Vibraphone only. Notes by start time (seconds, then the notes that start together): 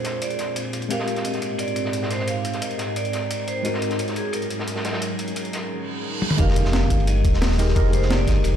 Already playing: C5
0.22 D5
0.91 F5
1.25 D#5
1.59 D5
2.11 C5
2.28 F5
2.62 D#5
2.96 D5
3.48 C5
3.65 D#5
3.99 C#5
4.16 G#4
4.33 A#4
6.39 F5
7.07 D#5
7.76 A#4
7.93 C5
8.11 D5
8.28 D#5